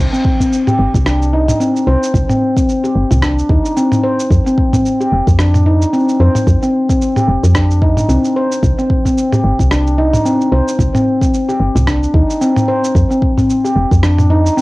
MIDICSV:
0, 0, Header, 1, 4, 480
1, 0, Start_track
1, 0, Key_signature, -3, "minor"
1, 0, Tempo, 540541
1, 1902, Time_signature, 4, 2, 24, 8
1, 12977, End_track
2, 0, Start_track
2, 0, Title_t, "Handpan"
2, 0, Program_c, 0, 114
2, 117, Note_on_c, 0, 60, 72
2, 344, Note_off_c, 0, 60, 0
2, 359, Note_on_c, 0, 60, 69
2, 457, Note_off_c, 0, 60, 0
2, 598, Note_on_c, 0, 67, 61
2, 696, Note_off_c, 0, 67, 0
2, 942, Note_on_c, 0, 62, 71
2, 1072, Note_off_c, 0, 62, 0
2, 1183, Note_on_c, 0, 63, 63
2, 1412, Note_off_c, 0, 63, 0
2, 1423, Note_on_c, 0, 60, 68
2, 1552, Note_off_c, 0, 60, 0
2, 1662, Note_on_c, 0, 72, 69
2, 2025, Note_off_c, 0, 72, 0
2, 2037, Note_on_c, 0, 60, 72
2, 2264, Note_off_c, 0, 60, 0
2, 2279, Note_on_c, 0, 60, 67
2, 2377, Note_off_c, 0, 60, 0
2, 2520, Note_on_c, 0, 67, 63
2, 2617, Note_off_c, 0, 67, 0
2, 2865, Note_on_c, 0, 62, 76
2, 2994, Note_off_c, 0, 62, 0
2, 3105, Note_on_c, 0, 63, 69
2, 3333, Note_off_c, 0, 63, 0
2, 3345, Note_on_c, 0, 60, 73
2, 3473, Note_off_c, 0, 60, 0
2, 3584, Note_on_c, 0, 72, 73
2, 3823, Note_off_c, 0, 72, 0
2, 3963, Note_on_c, 0, 60, 75
2, 4187, Note_off_c, 0, 60, 0
2, 4203, Note_on_c, 0, 60, 70
2, 4299, Note_off_c, 0, 60, 0
2, 4444, Note_on_c, 0, 67, 59
2, 4540, Note_off_c, 0, 67, 0
2, 4787, Note_on_c, 0, 62, 75
2, 4914, Note_off_c, 0, 62, 0
2, 5026, Note_on_c, 0, 63, 68
2, 5254, Note_off_c, 0, 63, 0
2, 5267, Note_on_c, 0, 60, 76
2, 5394, Note_off_c, 0, 60, 0
2, 5506, Note_on_c, 0, 72, 70
2, 5867, Note_off_c, 0, 72, 0
2, 5883, Note_on_c, 0, 60, 73
2, 6107, Note_off_c, 0, 60, 0
2, 6123, Note_on_c, 0, 60, 70
2, 6219, Note_off_c, 0, 60, 0
2, 6363, Note_on_c, 0, 67, 63
2, 6459, Note_off_c, 0, 67, 0
2, 6704, Note_on_c, 0, 62, 71
2, 6833, Note_off_c, 0, 62, 0
2, 6945, Note_on_c, 0, 63, 66
2, 7173, Note_off_c, 0, 63, 0
2, 7187, Note_on_c, 0, 60, 73
2, 7314, Note_off_c, 0, 60, 0
2, 7428, Note_on_c, 0, 72, 67
2, 7665, Note_off_c, 0, 72, 0
2, 7803, Note_on_c, 0, 60, 72
2, 8027, Note_off_c, 0, 60, 0
2, 8041, Note_on_c, 0, 60, 69
2, 8138, Note_off_c, 0, 60, 0
2, 8281, Note_on_c, 0, 67, 63
2, 8378, Note_off_c, 0, 67, 0
2, 8625, Note_on_c, 0, 62, 73
2, 8753, Note_off_c, 0, 62, 0
2, 8863, Note_on_c, 0, 63, 70
2, 9092, Note_off_c, 0, 63, 0
2, 9104, Note_on_c, 0, 60, 70
2, 9233, Note_off_c, 0, 60, 0
2, 9343, Note_on_c, 0, 72, 70
2, 9705, Note_off_c, 0, 72, 0
2, 9720, Note_on_c, 0, 60, 73
2, 9946, Note_off_c, 0, 60, 0
2, 9960, Note_on_c, 0, 60, 67
2, 10058, Note_off_c, 0, 60, 0
2, 10200, Note_on_c, 0, 67, 63
2, 10298, Note_off_c, 0, 67, 0
2, 10542, Note_on_c, 0, 62, 74
2, 10672, Note_off_c, 0, 62, 0
2, 10781, Note_on_c, 0, 63, 70
2, 11011, Note_off_c, 0, 63, 0
2, 11024, Note_on_c, 0, 60, 79
2, 11153, Note_off_c, 0, 60, 0
2, 11262, Note_on_c, 0, 72, 75
2, 11502, Note_off_c, 0, 72, 0
2, 11638, Note_on_c, 0, 60, 70
2, 11865, Note_off_c, 0, 60, 0
2, 11878, Note_on_c, 0, 60, 66
2, 11977, Note_off_c, 0, 60, 0
2, 12119, Note_on_c, 0, 67, 61
2, 12217, Note_off_c, 0, 67, 0
2, 12462, Note_on_c, 0, 62, 79
2, 12592, Note_off_c, 0, 62, 0
2, 12701, Note_on_c, 0, 63, 74
2, 12931, Note_off_c, 0, 63, 0
2, 12942, Note_on_c, 0, 60, 74
2, 12977, Note_off_c, 0, 60, 0
2, 12977, End_track
3, 0, Start_track
3, 0, Title_t, "FM bass"
3, 0, Program_c, 1, 39
3, 700, Note_on_c, 1, 31, 82
3, 783, Note_off_c, 1, 31, 0
3, 837, Note_on_c, 1, 36, 97
3, 1356, Note_off_c, 1, 36, 0
3, 1661, Note_on_c, 1, 36, 81
3, 1744, Note_off_c, 1, 36, 0
3, 1900, Note_on_c, 1, 36, 96
3, 1983, Note_off_c, 1, 36, 0
3, 2623, Note_on_c, 1, 31, 84
3, 2705, Note_off_c, 1, 31, 0
3, 2761, Note_on_c, 1, 36, 96
3, 3037, Note_off_c, 1, 36, 0
3, 3103, Note_on_c, 1, 39, 99
3, 3185, Note_off_c, 1, 39, 0
3, 3823, Note_on_c, 1, 41, 100
3, 3905, Note_off_c, 1, 41, 0
3, 4546, Note_on_c, 1, 29, 87
3, 4626, Note_off_c, 1, 29, 0
3, 4680, Note_on_c, 1, 41, 95
3, 5197, Note_off_c, 1, 41, 0
3, 5504, Note_on_c, 1, 41, 82
3, 5586, Note_off_c, 1, 41, 0
3, 5744, Note_on_c, 1, 41, 98
3, 5826, Note_off_c, 1, 41, 0
3, 6463, Note_on_c, 1, 29, 88
3, 6545, Note_off_c, 1, 29, 0
3, 6601, Note_on_c, 1, 41, 90
3, 7078, Note_on_c, 1, 44, 87
3, 7092, Note_off_c, 1, 41, 0
3, 7141, Note_off_c, 1, 44, 0
3, 7183, Note_on_c, 1, 36, 79
3, 7265, Note_off_c, 1, 36, 0
3, 7663, Note_on_c, 1, 36, 102
3, 7745, Note_off_c, 1, 36, 0
3, 8381, Note_on_c, 1, 31, 93
3, 8464, Note_off_c, 1, 31, 0
3, 8518, Note_on_c, 1, 36, 89
3, 9036, Note_off_c, 1, 36, 0
3, 9342, Note_on_c, 1, 36, 80
3, 9424, Note_off_c, 1, 36, 0
3, 9580, Note_on_c, 1, 36, 96
3, 9663, Note_off_c, 1, 36, 0
3, 10301, Note_on_c, 1, 31, 82
3, 10384, Note_off_c, 1, 31, 0
3, 10437, Note_on_c, 1, 36, 89
3, 10716, Note_off_c, 1, 36, 0
3, 10781, Note_on_c, 1, 39, 101
3, 10864, Note_off_c, 1, 39, 0
3, 11501, Note_on_c, 1, 41, 96
3, 11584, Note_off_c, 1, 41, 0
3, 12219, Note_on_c, 1, 29, 89
3, 12303, Note_off_c, 1, 29, 0
3, 12358, Note_on_c, 1, 41, 91
3, 12876, Note_off_c, 1, 41, 0
3, 12977, End_track
4, 0, Start_track
4, 0, Title_t, "Drums"
4, 124, Note_on_c, 9, 82, 32
4, 213, Note_off_c, 9, 82, 0
4, 221, Note_on_c, 9, 36, 103
4, 310, Note_off_c, 9, 36, 0
4, 358, Note_on_c, 9, 36, 56
4, 366, Note_on_c, 9, 82, 57
4, 447, Note_off_c, 9, 36, 0
4, 455, Note_off_c, 9, 82, 0
4, 469, Note_on_c, 9, 82, 47
4, 558, Note_off_c, 9, 82, 0
4, 597, Note_on_c, 9, 45, 65
4, 604, Note_on_c, 9, 82, 30
4, 686, Note_off_c, 9, 45, 0
4, 692, Note_off_c, 9, 82, 0
4, 838, Note_on_c, 9, 36, 96
4, 844, Note_on_c, 9, 82, 59
4, 927, Note_off_c, 9, 36, 0
4, 933, Note_off_c, 9, 82, 0
4, 941, Note_on_c, 9, 37, 71
4, 948, Note_on_c, 9, 82, 51
4, 1030, Note_off_c, 9, 37, 0
4, 1037, Note_off_c, 9, 82, 0
4, 1083, Note_on_c, 9, 82, 30
4, 1172, Note_off_c, 9, 82, 0
4, 1317, Note_on_c, 9, 45, 71
4, 1323, Note_on_c, 9, 82, 66
4, 1405, Note_off_c, 9, 45, 0
4, 1412, Note_off_c, 9, 82, 0
4, 1428, Note_on_c, 9, 82, 52
4, 1516, Note_off_c, 9, 82, 0
4, 1566, Note_on_c, 9, 82, 33
4, 1655, Note_off_c, 9, 82, 0
4, 1806, Note_on_c, 9, 82, 66
4, 1894, Note_off_c, 9, 82, 0
4, 1901, Note_on_c, 9, 36, 118
4, 1909, Note_on_c, 9, 82, 52
4, 1990, Note_off_c, 9, 36, 0
4, 1998, Note_off_c, 9, 82, 0
4, 2038, Note_on_c, 9, 45, 67
4, 2045, Note_on_c, 9, 82, 33
4, 2127, Note_off_c, 9, 45, 0
4, 2133, Note_off_c, 9, 82, 0
4, 2278, Note_on_c, 9, 36, 97
4, 2284, Note_on_c, 9, 82, 63
4, 2367, Note_off_c, 9, 36, 0
4, 2373, Note_off_c, 9, 82, 0
4, 2389, Note_on_c, 9, 82, 50
4, 2478, Note_off_c, 9, 82, 0
4, 2526, Note_on_c, 9, 82, 33
4, 2615, Note_off_c, 9, 82, 0
4, 2758, Note_on_c, 9, 45, 65
4, 2765, Note_on_c, 9, 82, 60
4, 2847, Note_off_c, 9, 45, 0
4, 2854, Note_off_c, 9, 82, 0
4, 2862, Note_on_c, 9, 36, 57
4, 2862, Note_on_c, 9, 37, 72
4, 2869, Note_on_c, 9, 82, 52
4, 2951, Note_off_c, 9, 36, 0
4, 2951, Note_off_c, 9, 37, 0
4, 2957, Note_off_c, 9, 82, 0
4, 3008, Note_on_c, 9, 82, 33
4, 3097, Note_off_c, 9, 82, 0
4, 3102, Note_on_c, 9, 36, 103
4, 3191, Note_off_c, 9, 36, 0
4, 3245, Note_on_c, 9, 82, 63
4, 3334, Note_off_c, 9, 82, 0
4, 3349, Note_on_c, 9, 82, 53
4, 3437, Note_off_c, 9, 82, 0
4, 3479, Note_on_c, 9, 45, 70
4, 3486, Note_on_c, 9, 82, 35
4, 3568, Note_off_c, 9, 45, 0
4, 3575, Note_off_c, 9, 82, 0
4, 3727, Note_on_c, 9, 82, 66
4, 3816, Note_off_c, 9, 82, 0
4, 3823, Note_on_c, 9, 36, 118
4, 3831, Note_on_c, 9, 82, 52
4, 3912, Note_off_c, 9, 36, 0
4, 3920, Note_off_c, 9, 82, 0
4, 3968, Note_on_c, 9, 82, 33
4, 4057, Note_off_c, 9, 82, 0
4, 4064, Note_on_c, 9, 36, 99
4, 4153, Note_off_c, 9, 36, 0
4, 4200, Note_on_c, 9, 45, 69
4, 4201, Note_on_c, 9, 36, 56
4, 4207, Note_on_c, 9, 82, 66
4, 4289, Note_off_c, 9, 36, 0
4, 4289, Note_off_c, 9, 45, 0
4, 4296, Note_off_c, 9, 82, 0
4, 4311, Note_on_c, 9, 82, 52
4, 4400, Note_off_c, 9, 82, 0
4, 4447, Note_on_c, 9, 82, 31
4, 4536, Note_off_c, 9, 82, 0
4, 4680, Note_on_c, 9, 36, 103
4, 4686, Note_on_c, 9, 82, 63
4, 4769, Note_off_c, 9, 36, 0
4, 4775, Note_off_c, 9, 82, 0
4, 4783, Note_on_c, 9, 37, 71
4, 4789, Note_on_c, 9, 82, 53
4, 4871, Note_off_c, 9, 37, 0
4, 4878, Note_off_c, 9, 82, 0
4, 4920, Note_on_c, 9, 45, 74
4, 4927, Note_on_c, 9, 82, 33
4, 5009, Note_off_c, 9, 45, 0
4, 5016, Note_off_c, 9, 82, 0
4, 5167, Note_on_c, 9, 82, 64
4, 5256, Note_off_c, 9, 82, 0
4, 5269, Note_on_c, 9, 82, 54
4, 5358, Note_off_c, 9, 82, 0
4, 5405, Note_on_c, 9, 82, 34
4, 5494, Note_off_c, 9, 82, 0
4, 5638, Note_on_c, 9, 45, 65
4, 5645, Note_on_c, 9, 82, 62
4, 5727, Note_off_c, 9, 45, 0
4, 5734, Note_off_c, 9, 82, 0
4, 5744, Note_on_c, 9, 36, 109
4, 5748, Note_on_c, 9, 82, 54
4, 5833, Note_off_c, 9, 36, 0
4, 5837, Note_off_c, 9, 82, 0
4, 5885, Note_on_c, 9, 82, 34
4, 5973, Note_off_c, 9, 82, 0
4, 6121, Note_on_c, 9, 36, 100
4, 6126, Note_on_c, 9, 82, 64
4, 6210, Note_off_c, 9, 36, 0
4, 6215, Note_off_c, 9, 82, 0
4, 6229, Note_on_c, 9, 82, 54
4, 6318, Note_off_c, 9, 82, 0
4, 6359, Note_on_c, 9, 45, 69
4, 6366, Note_on_c, 9, 82, 30
4, 6448, Note_off_c, 9, 45, 0
4, 6455, Note_off_c, 9, 82, 0
4, 6606, Note_on_c, 9, 82, 62
4, 6695, Note_off_c, 9, 82, 0
4, 6703, Note_on_c, 9, 37, 70
4, 6704, Note_on_c, 9, 36, 62
4, 6710, Note_on_c, 9, 82, 53
4, 6792, Note_off_c, 9, 37, 0
4, 6793, Note_off_c, 9, 36, 0
4, 6799, Note_off_c, 9, 82, 0
4, 6846, Note_on_c, 9, 82, 32
4, 6934, Note_off_c, 9, 82, 0
4, 6943, Note_on_c, 9, 36, 101
4, 7032, Note_off_c, 9, 36, 0
4, 7079, Note_on_c, 9, 45, 74
4, 7086, Note_on_c, 9, 82, 68
4, 7168, Note_off_c, 9, 45, 0
4, 7174, Note_off_c, 9, 82, 0
4, 7188, Note_on_c, 9, 82, 54
4, 7277, Note_off_c, 9, 82, 0
4, 7325, Note_on_c, 9, 82, 33
4, 7414, Note_off_c, 9, 82, 0
4, 7566, Note_on_c, 9, 82, 66
4, 7655, Note_off_c, 9, 82, 0
4, 7663, Note_on_c, 9, 36, 115
4, 7668, Note_on_c, 9, 82, 52
4, 7752, Note_off_c, 9, 36, 0
4, 7757, Note_off_c, 9, 82, 0
4, 7805, Note_on_c, 9, 82, 31
4, 7894, Note_off_c, 9, 82, 0
4, 7902, Note_on_c, 9, 36, 94
4, 7991, Note_off_c, 9, 36, 0
4, 8038, Note_on_c, 9, 36, 55
4, 8046, Note_on_c, 9, 82, 57
4, 8127, Note_off_c, 9, 36, 0
4, 8135, Note_off_c, 9, 82, 0
4, 8150, Note_on_c, 9, 82, 53
4, 8239, Note_off_c, 9, 82, 0
4, 8279, Note_on_c, 9, 45, 75
4, 8286, Note_on_c, 9, 82, 32
4, 8368, Note_off_c, 9, 45, 0
4, 8375, Note_off_c, 9, 82, 0
4, 8518, Note_on_c, 9, 36, 91
4, 8526, Note_on_c, 9, 82, 61
4, 8607, Note_off_c, 9, 36, 0
4, 8615, Note_off_c, 9, 82, 0
4, 8623, Note_on_c, 9, 37, 68
4, 8629, Note_on_c, 9, 82, 50
4, 8711, Note_off_c, 9, 37, 0
4, 8718, Note_off_c, 9, 82, 0
4, 8765, Note_on_c, 9, 82, 32
4, 8854, Note_off_c, 9, 82, 0
4, 8999, Note_on_c, 9, 45, 79
4, 9006, Note_on_c, 9, 82, 64
4, 9088, Note_off_c, 9, 45, 0
4, 9095, Note_off_c, 9, 82, 0
4, 9110, Note_on_c, 9, 82, 53
4, 9198, Note_off_c, 9, 82, 0
4, 9247, Note_on_c, 9, 82, 34
4, 9335, Note_off_c, 9, 82, 0
4, 9486, Note_on_c, 9, 82, 65
4, 9574, Note_off_c, 9, 82, 0
4, 9581, Note_on_c, 9, 36, 104
4, 9591, Note_on_c, 9, 82, 52
4, 9669, Note_off_c, 9, 36, 0
4, 9679, Note_off_c, 9, 82, 0
4, 9720, Note_on_c, 9, 45, 75
4, 9727, Note_on_c, 9, 82, 33
4, 9809, Note_off_c, 9, 45, 0
4, 9816, Note_off_c, 9, 82, 0
4, 9958, Note_on_c, 9, 36, 94
4, 9966, Note_on_c, 9, 82, 57
4, 10047, Note_off_c, 9, 36, 0
4, 10055, Note_off_c, 9, 82, 0
4, 10070, Note_on_c, 9, 82, 49
4, 10158, Note_off_c, 9, 82, 0
4, 10206, Note_on_c, 9, 82, 30
4, 10294, Note_off_c, 9, 82, 0
4, 10440, Note_on_c, 9, 45, 72
4, 10446, Note_on_c, 9, 82, 58
4, 10528, Note_off_c, 9, 45, 0
4, 10535, Note_off_c, 9, 82, 0
4, 10542, Note_on_c, 9, 36, 56
4, 10543, Note_on_c, 9, 37, 66
4, 10549, Note_on_c, 9, 82, 49
4, 10630, Note_off_c, 9, 36, 0
4, 10631, Note_off_c, 9, 37, 0
4, 10638, Note_off_c, 9, 82, 0
4, 10685, Note_on_c, 9, 82, 31
4, 10774, Note_off_c, 9, 82, 0
4, 10781, Note_on_c, 9, 36, 97
4, 10870, Note_off_c, 9, 36, 0
4, 10925, Note_on_c, 9, 82, 62
4, 11014, Note_off_c, 9, 82, 0
4, 11027, Note_on_c, 9, 82, 50
4, 11115, Note_off_c, 9, 82, 0
4, 11158, Note_on_c, 9, 45, 79
4, 11165, Note_on_c, 9, 82, 32
4, 11247, Note_off_c, 9, 45, 0
4, 11254, Note_off_c, 9, 82, 0
4, 11406, Note_on_c, 9, 82, 58
4, 11495, Note_off_c, 9, 82, 0
4, 11501, Note_on_c, 9, 36, 109
4, 11510, Note_on_c, 9, 82, 47
4, 11590, Note_off_c, 9, 36, 0
4, 11598, Note_off_c, 9, 82, 0
4, 11645, Note_on_c, 9, 82, 30
4, 11734, Note_off_c, 9, 82, 0
4, 11741, Note_on_c, 9, 36, 91
4, 11830, Note_off_c, 9, 36, 0
4, 11878, Note_on_c, 9, 36, 51
4, 11879, Note_on_c, 9, 45, 77
4, 11886, Note_on_c, 9, 82, 57
4, 11967, Note_off_c, 9, 36, 0
4, 11968, Note_off_c, 9, 45, 0
4, 11974, Note_off_c, 9, 82, 0
4, 11989, Note_on_c, 9, 82, 48
4, 12078, Note_off_c, 9, 82, 0
4, 12126, Note_on_c, 9, 82, 28
4, 12214, Note_off_c, 9, 82, 0
4, 12358, Note_on_c, 9, 36, 97
4, 12365, Note_on_c, 9, 82, 53
4, 12446, Note_off_c, 9, 36, 0
4, 12454, Note_off_c, 9, 82, 0
4, 12461, Note_on_c, 9, 37, 73
4, 12468, Note_on_c, 9, 82, 47
4, 12550, Note_off_c, 9, 37, 0
4, 12556, Note_off_c, 9, 82, 0
4, 12598, Note_on_c, 9, 45, 78
4, 12605, Note_on_c, 9, 82, 30
4, 12687, Note_off_c, 9, 45, 0
4, 12693, Note_off_c, 9, 82, 0
4, 12844, Note_on_c, 9, 82, 59
4, 12933, Note_off_c, 9, 82, 0
4, 12949, Note_on_c, 9, 82, 49
4, 12977, Note_off_c, 9, 82, 0
4, 12977, End_track
0, 0, End_of_file